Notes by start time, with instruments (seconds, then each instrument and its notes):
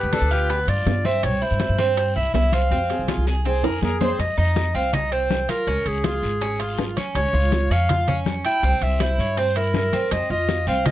Already playing: cuban tres B3, flute G4, clarinet B4
0.03 upright bass D2
0.12 cuban tres D4, flute A4, high bongo, high conga, high timbale, low timbale, short guiro, maracas
0.22 upright bass D2
0.31 cuban tres F4, flute G4, high bongo, high conga, short guiro, maracas
0.49 cuban tres B3, high bongo, high conga, high timbale, long guiro, maracas
0.67 upright bass G2, cuban tres F4, clarinet D5, high conga, high timbale, maracas
0.86 upright bass G2, high bongo, low bongo, high conga, high timbale, low timbale, short guiro, maracas
1.05 cuban tres C4, clarinet E5, high bongo, high conga, short guiro, maracas
1.23 upright bass C2, clarinet C#5, high bongo, high conga, high timbale, long guiro, maracas
1.42 cuban tres E4, clarinet C5, high bongo, high conga, maracas
1.51 upright bass G2
1.60 high bongo, high conga, high timbale, low timbale, short guiro, maracas
1.69 upright bass G2
1.78 cuban tres C4, high bongo, high conga, short guiro, maracas
1.97 clarinet C5, high bongo, high conga, high timbale, long guiro, maracas
2.15 upright bass C2, cuban tres E4, clarinet E5, high conga, maracas
2.34 upright bass C2, clarinet E5, high bongo, low bongo, high conga, high timbale, low timbale, short guiro, maracas
2.52 cuban tres C4, clarinet F5, high bongo, high conga, high timbale, short guiro, maracas
2.71 upright bass F2, cuban tres C4, high bongo, high conga, long guiro, maracas
2.89 flute G#4, high bongo, high conga, high timbale, maracas
2.99 upright bass C2
3.08 cuban tres F4, high bongo, high conga, high timbale, low timbale, short guiro, maracas
3.17 upright bass C2
3.27 cuban tres G#4, high bongo, high conga, short guiro, maracas
3.45 cuban tres C4, flute G#4, low bongo, high conga, high timbale, long guiro, maracas
3.63 upright bass F2, cuban tres G#4, flute A#4, low bongo, high conga, high timbale, maracas
3.82 upright bass F2, clarinet G#4, flute A#4, high conga, low timbale, short guiro, maracas
4.01 cuban tres C4, flute C5, low bongo, high conga, low timbale, short guiro, maracas
4.19 upright bass F2, clarinet D#5, high bongo, high timbale, long guiro, maracas
4.37 upright bass F2, cuban tres D#4, clarinet D#5, high conga, maracas
4.56 high bongo, high conga, high timbale, short guiro, maracas
4.74 upright bass C2, cuban tres C4, clarinet F5, high bongo, high conga, short guiro, maracas
4.93 cuban tres D#4, clarinet D#5, high bongo, high conga, low conga, high timbale, long guiro, maracas
5.12 cuban tres C4, clarinet C5, high bongo, high conga, high timbale, maracas
5.30 high bongo, low bongo, high conga, short guiro, maracas
5.48 cuban tres F4, clarinet A#4, high bongo, high conga, high timbale, short guiro, maracas
5.67 upright bass C#2, cuban tres C#4, high bongo, high conga, long guiro, maracas
5.86 upright bass C#2, clarinet G#4, high conga, high timbale, maracas
6.04 cuban tres F4, high bongo, high conga, high timbale, short guiro, maracas
6.22 upright bass G#1, high bongo, high conga, short guiro, maracas
6.41 cuban tres C#4, high bongo, high conga, high timbale, long guiro, maracas
6.59 cuban tres F4, high bongo, high conga, high timbale, maracas
6.78 high bongo, low bongo, high conga, short guiro, maracas
6.96 cuban tres C#4, high bongo, high conga, high timbale, short guiro, maracas
7.15 upright bass C#2, clarinet C#5, high bongo, high conga, high timbale, long guiro, maracas
7.33 upright bass C#2, cuban tres F4, high conga, maracas
7.52 high bongo, high conga, high timbale, short guiro, maracas
7.70 upright bass F2, cuban tres C#4, clarinet F5, high bongo, high conga, short guiro, maracas
7.89 cuban tres F4, high bongo, high conga, low conga, high timbale, long guiro, maracas
8.07 cuban tres C#4, high bongo, high conga, low conga, high timbale, maracas
8.26 high bongo, low bongo, high conga, short guiro, maracas
8.45 cuban tres E4, clarinet G5, high bongo, high timbale, short guiro, maracas
8.63 upright bass C2, cuban tres C4, high bongo, high conga, long guiro, maracas
8.81 upright bass C2, clarinet E5, high conga, high timbale, maracas
9.00 cuban tres E4, clarinet C5, high bongo, high conga, high timbale, short guiro, maracas
9.18 upright bass G2, clarinet C#5, high bongo, high conga, short guiro, maracas
9.37 cuban tres C4, clarinet C5, high bongo, high conga, high timbale, long guiro, maracas
9.55 cuban tres E4, clarinet A#4, high bongo, high conga, high timbale, maracas
9.74 clarinet A#4, high bongo, low bongo, high conga, short guiro, maracas
9.93 cuban tres C4, high bongo, high conga, high timbale, short guiro, maracas
10.11 upright bass F2, clarinet D#5, high bongo, high conga, high timbale, long guiro, maracas
10.30 upright bass F2, cuban tres F4, clarinet D#5, high conga, maracas
10.49 high bongo, high conga, high timbale, short guiro, maracas
10.67 upright bass C2, cuban tres C4, clarinet F5, high bongo, high conga, short guiro, maracas
10.86 cuban tres F4, clarinet D#5, high bongo, high conga, low conga, high timbale, long guiro, maracas